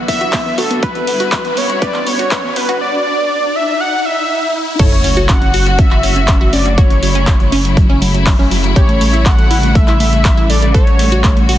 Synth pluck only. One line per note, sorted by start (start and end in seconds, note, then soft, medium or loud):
0.08 0.17 B3 medium
0.21 0.30 F#4 medium
0.33 0.42 B3 medium
0.46 0.54 B3 medium
0.58 0.67 F#4 medium
0.71 0.79 B3 medium
0.83 0.92 B4 loud
0.95 1.04 B3 medium
1.07 1.16 B3 medium
1.20 1.29 F#4 loud
1.32 1.41 B4 loud
1.45 1.53 B3 medium
1.57 1.66 B3 medium
1.70 1.78 F#4 medium
1.82 1.91 B4 loud
1.94 2.03 B3 medium
2.07 2.15 B3 medium
2.19 2.28 F#4 medium
2.31 2.40 B4 loud
2.44 2.53 B3 medium
2.56 2.65 B3 medium
2.69 2.77 F#4 loud
4.79 4.88 A4 loud
4.92 5.01 C#4 medium
5.04 5.13 C#4 medium
5.17 5.25 F#4 loud
5.29 5.38 C#4 medium
5.42 5.50 C#4 medium
5.54 5.63 F#4 loud
5.67 5.75 C#4 medium
5.79 5.87 C#4 medium
5.91 6.00 F#4 loud
6.04 6.12 C#4 medium
6.16 6.25 C#4 medium
6.28 6.37 C#4 medium
6.41 6.49 F#4 medium
6.53 6.62 C#4 medium
6.66 6.74 C#4 medium
6.78 6.87 F#4 loud
6.90 6.99 F#3 medium
7.03 7.11 F#3 medium
7.15 7.24 C#4 loud
7.27 7.36 F#3 medium
7.40 7.49 F#3 medium
7.52 7.61 C#4 loud
7.65 7.73 F#3 medium
7.77 7.86 F#3 medium
7.90 7.98 C#4 medium
8.02 8.11 F#3 medium
8.14 8.23 F#3 medium
8.26 8.35 F#3 medium
8.39 8.48 C#4 medium
8.51 8.60 F#3 medium
8.64 8.72 F#3 medium
8.76 8.85 G4 loud
8.89 8.97 A3 medium
9.01 9.10 A3 medium
9.13 9.22 E4 loud
9.26 9.35 A3 medium
9.38 9.47 A3 medium
9.51 9.59 E4 medium
9.63 9.72 A3 medium
9.75 9.84 A3 medium
9.88 9.96 E4 loud
10.00 10.09 A3 medium
10.13 10.21 A3 medium
10.25 10.34 A3 medium
10.37 10.46 E4 medium
10.50 10.59 A3 medium
10.62 10.71 A3 medium
10.74 10.83 A4 loud
10.87 10.96 A3 medium
10.99 11.08 A3 medium
11.12 11.20 F#4 loud
11.24 11.33 A3 medium
11.37 11.45 A3 medium
11.49 11.58 F#4 medium